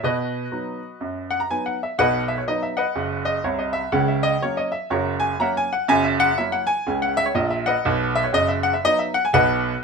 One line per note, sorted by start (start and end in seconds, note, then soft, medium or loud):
0.03 0.44 B2 medium
0.03 1.46 F#4 medium
0.03 1.46 B4 medium
0.03 1.28 D#5 medium
0.52 0.78 F#3 soft
0.52 0.79 B3 soft
0.52 0.79 D#4 soft
1.01 1.42 F#2 medium
1.31 1.40 F#5 medium
1.40 1.49 A#5 medium
1.50 1.77 F#3 soft
1.50 1.77 B3 soft
1.50 1.77 D#4 soft
1.50 1.64 G#5 medium
1.66 1.79 F#5 medium
1.83 1.96 E5 medium
1.98 2.40 B1 medium
1.98 2.40 B2 medium
1.98 2.27 B4 medium
1.98 2.27 D#5 medium
1.98 2.24 F#5 loud
2.28 2.38 E5 medium
2.38 2.47 C#5 medium
2.47 2.74 F#3 soft
2.47 2.74 B3 soft
2.47 2.75 D#4 soft
2.47 2.62 D#5 medium
2.63 2.77 E5 medium
2.77 3.23 B4 medium
2.77 3.23 D#5 medium
2.77 3.18 F#5 medium
2.95 3.37 F#1 medium
2.95 3.37 F#2 medium
3.25 3.42 D#5 medium
3.44 3.83 C2 medium
3.44 3.83 C3 medium
3.44 3.59 C#5 medium
3.59 3.74 D#5 medium
3.73 3.90 E5 medium
3.92 4.34 C#2 medium
3.92 4.34 C#3 medium
3.92 4.08 F#5 medium
4.08 4.23 E5 medium
4.23 4.39 D#5 medium
4.42 4.69 F#3 soft
4.42 4.69 A#3 soft
4.42 4.70 C#4 medium
4.42 4.57 C#5 medium
4.57 4.72 D#5 medium
4.72 4.88 E5 medium
4.90 5.32 F#1 medium
4.90 5.32 F#2 medium
4.90 5.19 F#4 medium
4.90 5.19 A#4 medium
4.90 5.16 C#5 medium
5.20 5.37 G#5 medium
5.40 5.67 F#3 soft
5.40 5.67 A#3 medium
5.40 5.67 C#4 soft
5.40 5.56 E5 medium
5.40 5.56 F#5 medium
5.40 5.54 A#5 medium
5.57 5.71 G#5 medium
5.73 5.87 F#5 medium
5.88 6.30 F#1 medium
5.88 6.30 F#2 loud
5.88 6.04 G#5 loud
6.04 6.19 E5 medium
6.20 6.36 F#5 loud
6.38 6.65 F#3 soft
6.38 6.65 A#3 soft
6.38 6.65 E4 soft
6.38 6.53 E5 medium
6.52 6.67 F#5 medium
6.67 6.96 G#5 loud
6.87 7.28 C#2 medium
6.87 7.28 C#3 medium
7.02 7.17 F#5 medium
7.17 7.26 E5 loud
7.26 7.36 C#5 medium
7.35 7.74 A#1 medium
7.35 7.74 A#2 medium
7.35 7.50 D#5 medium
7.50 7.65 E5 medium
7.66 8.12 B4 medium
7.66 8.12 D#5 medium
7.66 8.07 F#5 medium
7.85 8.24 B1 medium
7.85 8.24 B2 medium
8.16 8.25 E5 loud
8.24 8.33 C#5 medium
8.33 8.72 F#1 medium
8.33 8.73 F#2 medium
8.33 8.49 D#5 loud
8.48 8.63 E5 medium
8.63 8.73 F#5 medium
8.74 8.83 E5 medium
8.84 9.11 F#3 medium
8.84 9.11 B3 soft
8.84 9.11 D#4 medium
8.84 8.99 D#5 loud
8.99 9.13 E5 medium
9.14 9.23 F#5 medium
9.25 9.33 G#5 medium
9.33 9.72 B1 medium
9.33 9.72 B2 medium
9.33 9.79 B4 medium
9.33 9.79 D#5 medium
9.33 9.75 F#5 loud